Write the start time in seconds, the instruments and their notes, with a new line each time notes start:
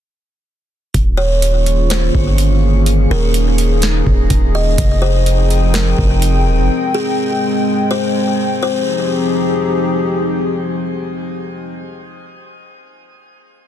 0.94 808-style bass D#1, analog synth pad D#3 A#3 C#4 F4 G#4, kick, closed hi-hat
1.17 kalimba C#5
1.42 closed hi-hat
1.66 closed hi-hat
1.90 kalimba C5, snare, closed hi-hat
2.15 808-style bass G1, kick
2.38 closed hi-hat
2.86 analog synth pad D#4, closed hi-hat
3.10 808-style bass D#1, kalimba A#4
3.34 closed hi-hat
3.58 closed hi-hat
3.82 snare, closed hi-hat
4.07 808-style bass D#1, kick
4.30 808-style bass D#1, kick, closed hi-hat
4.55 kalimba D#5
4.78 808-style bass F1, analog synth pad F3 C4 D#4 G5, kick, closed hi-hat
5.02 kalimba C5
5.26 closed hi-hat
5.50 closed hi-hat
5.74 kalimba A#4, snare, closed hi-hat
5.99 808-style bass F1, kick
6.22 closed hi-hat
6.46 808-style bass D#1
6.58 808-style bass F1
6.70 analog synth pad G#3
6.94 kalimba G#4
7.91 kalimba C5
8.62 analog synth pad F3 C4 D#4 G4 G#4, kalimba C5